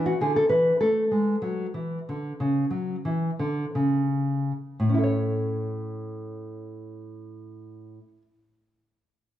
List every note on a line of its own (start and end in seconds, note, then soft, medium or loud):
0.00 0.12 E3 medium
0.06 0.21 F#4 medium
0.21 0.42 D3 medium
0.21 0.36 G#4 medium
0.36 0.49 A4 medium
0.49 0.72 E3 medium
0.49 0.79 B4 medium
0.81 1.03 A3 medium
0.81 4.41 A4 medium
1.11 1.34 G#3 medium
1.42 1.66 F#3 medium
1.74 1.98 E3 medium
2.09 2.32 D3 medium
2.40 2.64 C#3 soft
2.70 2.95 F#3 medium
3.05 3.30 E3 medium
3.39 3.64 D3 medium
3.75 4.51 C#3 medium
4.80 7.98 A2 medium
4.89 8.07 C#4 soft
4.94 5.03 E4 soft
4.98 8.17 A4 soft
5.03 8.22 C#5 soft